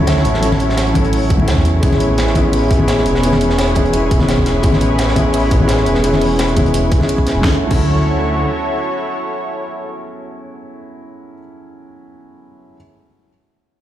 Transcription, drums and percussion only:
0.07 snare, closed hi-hat
0.17 snare
0.25 closed hi-hat
0.34 snare
0.42 closed hi-hat
0.51 snare, high conga
0.59 closed hi-hat
0.69 snare
0.77 snare, closed hi-hat
0.87 closed hi-hat
0.95 kick, closed hi-hat, high conga
1.04 closed hi-hat
1.13 closed hi-hat, open hi-hat
1.30 kick, closed hi-hat
1.40 high conga
1.48 snare, closed hi-hat
1.57 kick, snare
1.65 closed hi-hat
1.83 kick, closed hi-hat
1.92 snare, high conga
2.00 closed hi-hat
2.18 snare, closed hi-hat
2.27 snare
2.35 kick, closed hi-hat, high conga
2.53 closed hi-hat, open hi-hat
2.71 kick, closed hi-hat
2.80 high conga
2.88 snare, closed hi-hat
2.98 snare
3.06 closed hi-hat
3.15 snare
3.23 closed hi-hat
3.32 snare, high conga
3.41 closed hi-hat
3.50 snare
3.58 snare, closed hi-hat
3.67 closed hi-hat
3.75 kick, closed hi-hat, high conga
3.85 closed hi-hat
3.93 closed hi-hat
4.11 kick, closed hi-hat
4.20 snare, high conga
4.29 snare, closed hi-hat
4.38 kick
4.46 snare, closed hi-hat
4.63 kick, closed hi-hat
4.72 snare, high conga
4.81 closed hi-hat
4.98 snare, closed hi-hat
5.08 snare
5.16 kick, closed hi-hat, high conga
5.33 closed hi-hat, open hi-hat
5.51 kick, closed hi-hat
5.60 high conga
5.68 snare, closed hi-hat
5.77 snare
5.86 closed hi-hat
5.95 snare
6.04 closed hi-hat
6.13 snare, high conga
6.21 closed hi-hat, open hi-hat
6.39 snare, closed hi-hat
6.48 closed hi-hat
6.56 kick, closed hi-hat, high conga
6.66 closed hi-hat
6.74 closed hi-hat
6.91 kick, closed hi-hat
7.01 snare, high conga
7.09 closed hi-hat
7.18 kick
7.26 snare, closed hi-hat
7.44 kick, snare
7.71 kick, crash

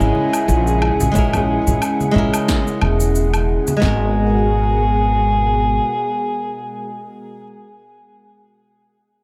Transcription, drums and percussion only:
0.00 cabasa
0.15 high conga
0.33 cabasa, low woodblock
0.49 cabasa
0.67 cabasa
0.82 low woodblock
1.00 high conga, cabasa
1.15 kick, cabasa
1.33 low conga, cabasa, low woodblock
1.67 low conga, cabasa
1.82 cabasa, low woodblock
2.00 high conga, cabasa
2.15 kick, low conga
2.34 cabasa, low woodblock
2.48 kick, snare, cabasa
2.67 cabasa
2.81 high conga, low woodblock
3.00 cabasa
3.15 cabasa
3.34 cabasa, low woodblock
3.67 high conga, cabasa
3.82 kick, snare

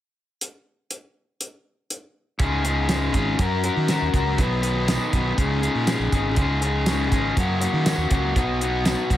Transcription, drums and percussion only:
0.41 closed hi-hat
0.91 closed hi-hat
1.41 closed hi-hat
1.90 closed hi-hat
2.39 kick, closed hi-hat
2.65 closed hi-hat
2.89 snare, closed hi-hat, tambourine
3.14 kick, closed hi-hat
3.39 kick, closed hi-hat
3.64 closed hi-hat
3.88 snare, closed hi-hat, tambourine
4.14 kick, closed hi-hat
4.38 kick, closed hi-hat
4.63 closed hi-hat
4.88 snare, closed hi-hat, tambourine
5.13 kick, closed hi-hat
5.38 kick, closed hi-hat
5.63 closed hi-hat
5.87 snare, closed hi-hat, tambourine
6.12 kick, closed hi-hat
6.36 kick, closed hi-hat
6.62 closed hi-hat
6.86 snare, closed hi-hat, tambourine
7.12 kick, closed hi-hat
7.37 kick, closed hi-hat
7.61 closed hi-hat
7.86 snare, closed hi-hat, tambourine
8.11 kick, closed hi-hat
8.36 kick, closed hi-hat
8.61 closed hi-hat
8.85 snare, closed hi-hat, tambourine
9.10 kick, closed hi-hat

